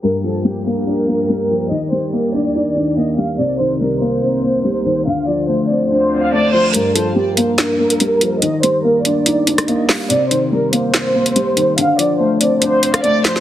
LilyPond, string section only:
\new Staff \with { instrumentName = "String section" } { \clef bass \time 4/4 \key g \minor \tempo 4 = 143 << { g'1~ | g'1 | bes'1 | c''1 |
r1 | r1 | r1 | r1 | } \\ { <g, f bes>1 | <ees, ees d''>1 | <c, c ees'>1 | <d, d f'>1 |
r1 | r1 | r1 | r1 | } >> }